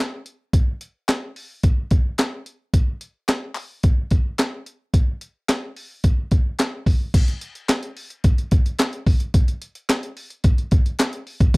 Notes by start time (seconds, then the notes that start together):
0.26 closed hi-hat
0.53 kick, closed hi-hat
0.81 closed hi-hat
1.09 snare, clap, closed hi-hat
1.36 open hi-hat
1.63 kick, closed hi-hat
1.91 kick, closed hi-hat
2.18 snare, clap, closed hi-hat
2.46 closed hi-hat
2.74 kick, closed hi-hat
3.01 closed hi-hat
3.28 snare, clap, closed hi-hat
3.55 clap, open hi-hat
3.83 kick, closed hi-hat
4.11 kick, closed hi-hat
4.38 snare, clap, closed hi-hat
4.66 closed hi-hat
4.94 kick, closed hi-hat
5.21 closed hi-hat
5.49 snare, clap, closed hi-hat
5.76 open hi-hat
6.04 kick, closed hi-hat
6.31 kick, closed hi-hat
6.59 snare, clap, closed hi-hat
6.86 kick, open hi-hat
7.14 kick, closed hi-hat, crash
7.28 closed hi-hat
7.41 closed hi-hat
7.55 closed hi-hat
7.69 snare, clap, closed hi-hat
7.83 closed hi-hat
7.97 open hi-hat
8.10 closed hi-hat
8.24 kick, closed hi-hat
8.38 closed hi-hat
8.51 kick, closed hi-hat
8.66 closed hi-hat
8.79 snare, clap, closed hi-hat
8.93 closed hi-hat
9.06 kick, open hi-hat
9.20 closed hi-hat
9.34 kick, closed hi-hat
9.48 closed hi-hat
9.62 closed hi-hat
9.75 closed hi-hat
9.89 snare, clap, closed hi-hat
10.03 closed hi-hat
10.17 open hi-hat
10.30 closed hi-hat
10.44 kick, closed hi-hat
10.58 closed hi-hat
10.71 kick, closed hi-hat
10.86 closed hi-hat
10.99 snare, clap, closed hi-hat
11.13 closed hi-hat
11.27 open hi-hat
11.40 kick, closed hi-hat